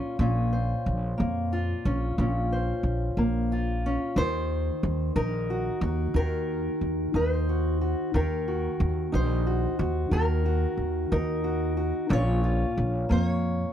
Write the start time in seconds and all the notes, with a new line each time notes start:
Already playing: A#2 A#3 C#4 F4 A#4
0.19 A#1 A#2 C#4
0.53 C5
0.86 A#1
1.18 F2 A#3
1.53 F4
1.85 A#1 C#4
2.18 A#1 A#2 C#4
2.52 C5
2.83 A#1
3.17 A#1 A#3
3.52 F4
3.86 C#4
4.16 D#2 D#3 C5
4.83 D#2
5.16 A#1 D#4 A#4
5.50 F#4
5.81 D#2 F#4
6.14 D#2 D#3 A#4
6.81 D#2
7.14 D#2 D#4 C5
7.49 F#4
7.81 F#4
8.14 D#2 D#3 A#4
8.48 F#4
8.80 D#2
9.12 A#1 D#4 C5
9.47 F#4
9.79 D#2 F#4
10.11 D#2 D#3 A#4
10.46 F#4
10.77 D#2
11.12 D#2 D#4 A#4
11.44 F#4
11.77 F#4
12.09 A#1 A#2 A#3 C#4 F4 C#5
12.44 F4
12.78 A#1
13.09 F2 A#3 C5
13.24 C#5